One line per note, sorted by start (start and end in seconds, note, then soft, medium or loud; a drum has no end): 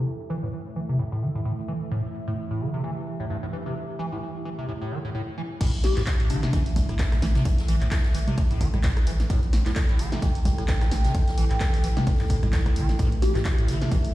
0.00 5.57 E3 medium
0.00 5.57 A3 medium
0.00 1.88 A4 medium
0.00 5.57 E5 medium
0.30 0.37 E3 loud
0.43 0.48 A2 medium
0.76 0.80 E3 medium
0.89 0.97 C3 medium
0.99 1.03 A2 medium
1.12 1.24 A2 medium
1.22 1.29 E3 loud
1.35 1.41 A2 medium
1.45 1.52 A2 medium
1.68 1.73 E3 medium
1.91 2.02 A2 medium
1.91 5.57 G4 medium
2.28 2.33 A2 loud
2.51 2.62 A2 medium
2.61 2.71 D3 loud
2.74 2.82 C3 medium
2.84 2.91 E3 medium
3.20 3.25 A2 medium
3.30 3.37 G2 medium
3.43 3.46 A2 medium
3.53 3.57 E3 medium
3.66 3.74 C3 medium
3.99 4.06 E3 loud
4.12 4.18 A2 medium
4.45 4.50 E3 medium
4.58 4.67 C3 medium
4.68 4.73 A2 medium
4.81 4.93 A2 medium
4.92 4.99 E3 loud
5.05 5.10 A2 medium
5.15 5.22 A2 medium
5.38 5.42 E3 medium
5.61 5.90 A1 loud
5.61 5.71 A2 loud
5.61 14.14 E3 medium
5.61 14.14 A3 medium
5.61 14.14 A4 medium
5.61 9.29 E5 loud
5.61 kick loud
5.61 closed hi-hat medium
5.61 crash loud
5.61 ride medium
5.74 closed hi-hat soft
5.84 5.98 G4 loud
5.84 snare medium
5.84 closed hi-hat medium
5.84 open hi-hat loud
5.96 6.03 A1 loud
5.96 6.02 A2 loud
5.96 snare soft
5.96 clap soft
5.96 closed hi-hat soft
6.06 kick loud
6.06 snare loud
6.06 clap loud
6.06 closed hi-hat medium
6.06 ride medium
6.20 6.31 A2 medium
6.20 closed hi-hat soft
6.29 6.39 A1 medium
6.29 6.41 D3 loud
6.29 6.76 D4 loud
6.29 closed hi-hat medium
6.29 open hi-hat loud
6.43 6.51 C3 medium
6.43 snare medium
6.43 closed hi-hat soft
6.53 6.82 A1 loud
6.53 6.60 E3 medium
6.53 kick loud
6.53 closed hi-hat medium
6.53 ride medium
6.66 open hi-hat medium
6.76 kick medium
6.76 snare medium
6.76 closed hi-hat medium
6.76 open hi-hat loud
6.76 low conga medium
6.89 7.17 A1 medium
6.89 6.95 A2 medium
6.89 cross-stick medium
6.89 closed hi-hat soft
6.99 7.06 G2 medium
6.99 kick loud
6.99 snare loud
6.99 clap loud
6.99 closed hi-hat medium
6.99 ride medium
7.12 7.16 A2 medium
7.12 cross-stick medium
7.12 snare medium
7.12 closed hi-hat soft
7.22 7.38 A1 medium
7.22 7.27 E3 medium
7.22 snare medium
7.22 closed hi-hat medium
7.22 open hi-hat loud
7.35 7.44 C3 medium
7.35 snare soft
7.35 closed hi-hat soft
7.45 7.74 A1 loud
7.45 kick loud
7.45 closed hi-hat loud
7.45 closed hi-hat medium
7.45 ride medium
7.58 snare medium
7.58 closed hi-hat soft
7.68 7.76 E3 loud
7.68 closed hi-hat medium
7.68 open hi-hat loud
7.81 7.88 A1 loud
7.81 7.87 A2 medium
7.81 clap soft
7.81 closed hi-hat soft
7.91 kick loud
7.91 snare loud
7.91 clap loud
7.91 closed hi-hat medium
7.91 ride medium
8.04 snare soft
8.04 closed hi-hat soft
8.15 8.23 A1 loud
8.15 8.19 E3 medium
8.15 closed hi-hat medium
8.15 open hi-hat loud
8.28 8.36 C3 medium
8.28 closed hi-hat soft
8.28 low conga medium
8.38 8.67 A1 medium
8.38 8.42 A2 medium
8.38 kick loud
8.38 closed hi-hat medium
8.38 open hi-hat medium
8.38 ride medium
8.51 8.62 A2 medium
8.51 closed hi-hat soft
8.61 8.68 E3 loud
8.61 kick medium
8.61 closed hi-hat medium
8.61 open hi-hat loud
8.74 9.01 A1 medium
8.74 8.79 A2 medium
8.74 cross-stick medium
8.74 closed hi-hat soft
8.74 low conga loud
8.83 8.91 A2 medium
8.83 kick loud
8.83 snare loud
8.83 clap loud
8.83 closed hi-hat medium
8.83 ride medium
8.97 cross-stick medium
8.97 closed hi-hat soft
9.07 9.23 A1 medium
9.07 9.11 E3 medium
9.07 closed hi-hat medium
9.07 open hi-hat loud
9.20 snare soft
9.20 closed hi-hat soft
9.30 9.59 A1 loud
9.30 9.41 A2 loud
9.30 12.98 G5 medium
9.30 kick loud
9.30 closed hi-hat loud
9.30 closed hi-hat medium
9.30 ride medium
9.43 closed hi-hat soft
9.53 snare medium
9.53 closed hi-hat medium
9.53 open hi-hat loud
9.65 9.73 A1 loud
9.65 9.72 A2 loud
9.65 snare soft
9.65 clap soft
9.65 closed hi-hat soft
9.76 kick loud
9.76 snare loud
9.76 clap loud
9.76 closed hi-hat medium
9.76 ride medium
9.89 10.01 A2 medium
9.89 closed hi-hat soft
9.99 10.08 A1 loud
9.99 10.10 D3 loud
9.99 closed hi-hat medium
9.99 open hi-hat loud
10.12 10.21 C3 medium
10.12 snare medium
10.12 closed hi-hat soft
10.22 10.51 A1 loud
10.22 10.29 E3 medium
10.22 kick loud
10.22 closed hi-hat medium
10.22 ride medium
10.35 open hi-hat medium
10.45 kick medium
10.45 snare soft
10.45 closed hi-hat medium
10.45 open hi-hat loud
10.45 low conga medium
10.58 10.86 A1 medium
10.58 10.64 A2 medium
10.58 cross-stick medium
10.58 closed hi-hat soft
10.68 10.76 G2 medium
10.68 kick loud
10.68 snare loud
10.68 clap loud
10.68 closed hi-hat medium
10.68 ride medium
10.81 10.85 A2 medium
10.81 cross-stick medium
10.81 snare medium
10.81 closed hi-hat soft
10.91 11.08 A1 medium
10.91 10.96 E3 medium
10.91 snare medium
10.91 closed hi-hat medium
10.91 open hi-hat loud
11.04 11.13 C3 medium
11.04 snare soft
11.04 closed hi-hat soft
11.15 11.44 A1 medium
11.15 kick loud
11.15 closed hi-hat medium
11.15 ride medium
11.28 snare medium
11.28 closed hi-hat soft
11.38 11.45 E3 loud
11.38 closed hi-hat medium
11.38 open hi-hat loud
11.50 11.57 A1 loud
11.50 11.56 A2 medium
11.50 clap soft
11.50 closed hi-hat soft
11.60 kick loud
11.60 snare loud
11.60 clap loud
11.60 closed hi-hat medium
11.60 closed hi-hat loud
11.60 ride medium
11.74 snare soft
11.74 open hi-hat medium
11.84 11.92 A1 medium
11.84 11.88 E3 medium
11.84 closed hi-hat medium
11.84 open hi-hat loud
11.97 12.05 C3 medium
11.97 snare medium
11.97 closed hi-hat soft
11.97 low conga medium
12.07 12.36 A1 medium
12.07 12.11 A2 medium
12.07 kick loud
12.07 closed hi-hat medium
12.07 open hi-hat medium
12.07 ride medium
12.19 12.25 A2 medium
12.19 clap soft
12.19 closed hi-hat soft
12.30 12.37 A2 medium
12.30 kick medium
12.30 closed hi-hat medium
12.30 open hi-hat loud
12.43 12.71 A1 medium
12.43 12.49 A2 medium
12.43 cross-stick medium
12.43 closed hi-hat soft
12.43 low conga medium
12.52 12.78 A1 medium
12.52 kick loud
12.52 snare loud
12.52 clap loud
12.52 closed hi-hat medium
12.52 ride medium
12.66 kick medium
12.66 cross-stick medium
12.66 closed hi-hat soft
12.76 12.92 A1 loud
12.76 12.87 E3 medium
12.76 closed hi-hat medium
12.76 open hi-hat loud
12.89 snare soft
12.89 closed hi-hat soft
12.99 13.28 A1 medium
12.99 13.10 A2 loud
12.99 14.14 E5 medium
12.99 kick loud
12.99 closed hi-hat medium
12.99 ride medium
13.12 closed hi-hat soft
13.22 13.37 G4 loud
13.22 snare medium
13.22 closed hi-hat medium
13.22 open hi-hat loud
13.35 13.42 A1 loud
13.35 13.41 A2 loud
13.35 snare soft
13.35 clap soft
13.35 closed hi-hat soft
13.45 kick loud
13.45 snare loud
13.45 clap loud
13.45 closed hi-hat medium
13.45 ride medium
13.58 13.70 A2 medium
13.58 closed hi-hat soft
13.68 13.77 A1 medium
13.68 13.79 D3 loud
13.68 closed hi-hat medium
13.68 open hi-hat loud
13.82 13.90 C3 medium
13.82 snare medium
13.82 closed hi-hat soft
13.92 14.14 A1 loud
13.92 13.99 E3 medium
13.92 kick loud
13.92 closed hi-hat medium
13.92 ride medium
14.05 open hi-hat medium